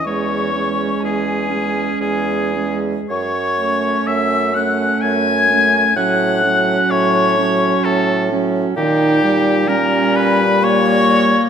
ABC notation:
X:1
M:3/4
L:1/8
Q:1/4=64
K:F#dor
V:1 name="Flute"
c'2 g2 g z | c'2 e' f' g'2 | f'2 c'2 a z | [K:D#phr] =g2 a b c'2 |]
V:2 name="Oboe"
c2 G2 G z | c2 e f g2 | f2 c2 A z | [K:D#phr] =G2 A B c2 |]
V:3 name="Clarinet"
C C2 C2 C | z C2 C2 C | C C2 C2 C | [K:D#phr] D2 C2 A,2 |]
V:4 name="French horn" clef=bass
G, G,2 G,2 G, | z A,2 A,2 A, | F, F,2 F,2 F, | [K:D#phr] D, =G, G,4 |]
V:5 name="Bassoon" clef=bass
E,,2 E,,2 E,,2 | F,,2 F,,2 F,,2 | A,,2 A,,2 A,,2 | [K:D#phr] A,,6 |]